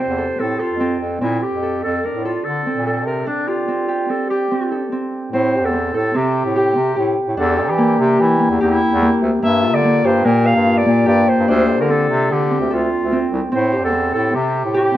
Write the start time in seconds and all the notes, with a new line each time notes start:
Already playing: F4 G4 A4
0.00 C4 C5
0.08 E2
0.18 A4
0.39 A2 C4 A4
0.59 F4 A4
0.70 F2
0.80 C4
1.00 F2
1.21 A#2 C4 E4
1.43 G4
1.52 F2
1.63 A4
1.83 F2 A4
2.04 D4 A#4
2.14 A2
2.25 F4 A4
2.44 D3 A4
2.66 C4
2.75 A#2
2.86 A4
3.06 C3 A#4
3.27 D4
3.48 F4 G4
3.68 C4
3.88 G4
4.09 C4 A4
4.30 G4
4.51 C4
4.71 A4
4.92 C4
5.32 A2 C4 C5
5.55 G4
5.63 E2 A4
5.73 C4
5.94 A2 A4
6.14 C3 C4 G4
6.45 A2
6.56 G4
6.76 C3 C4
6.96 A2 G4
7.28 A2
7.37 E2 D4 A4
7.58 G4
7.68 E3 G4
7.78 A#3
7.99 C3 G4
8.19 E3 E4 G4
8.39 A#3
8.50 E2
8.61 E2 E4 G4
8.91 E2
9.02 A#3
9.22 D2
9.42 G2 A#3 E5
9.63 F4
9.73 D3 D5
9.84 A#3
10.04 G2 G4 C5
10.24 A#2 A#3 A#4
10.46 F5
10.56 G2
10.66 F4
10.78 D5
10.86 A#2 A#3
11.06 G2 G4 D5
11.29 C5
11.39 G2
11.48 D2 D4 C5
11.67 A4
11.79 D3 A#4
11.88 C4 A4
12.10 C3
12.29 D3 G4 A4
12.51 C4
12.61 D2
12.70 D2 F4 A4
13.02 D2
13.12 C4
13.32 C2
13.52 A2 C4 C5
13.72 G4
13.84 E2 A4
13.92 C4
14.13 A2 A4
14.33 C3 C4 G4
14.65 A2
14.74 G4